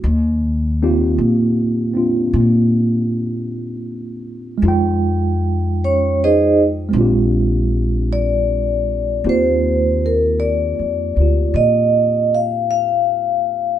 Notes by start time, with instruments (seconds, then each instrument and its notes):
0.04 upright bass D#2
0.83 tine electric piano A#3 C4 D#4 F4 G4
1.18 upright bass A#2
1.94 tine electric piano C4 D4 F4
2.33 upright bass A#2
4.58 tine electric piano G#3
4.62 upright bass F2, tine electric piano D#4 F4
4.68 tine electric piano G5
5.84 vibraphone C#4 C#5
6.24 vibraphone D#4 G#4 C5 D#5
6.89 tine electric piano G#3 C4
6.93 upright bass A#1, tine electric piano D4
6.98 tine electric piano F4 G4
8.13 vibraphone D5
9.24 upright bass D#2, tine electric piano A#3 C4 D#4 F4 G4
9.29 vibraphone C5
10.06 vibraphone A#4
10.40 vibraphone D5
10.79 upright bass F2
11.16 upright bass D2, tine electric piano F4
11.21 tine electric piano G4
11.54 upright bass A#2, vibraphone D#5
12.35 vibraphone F5
12.71 vibraphone F5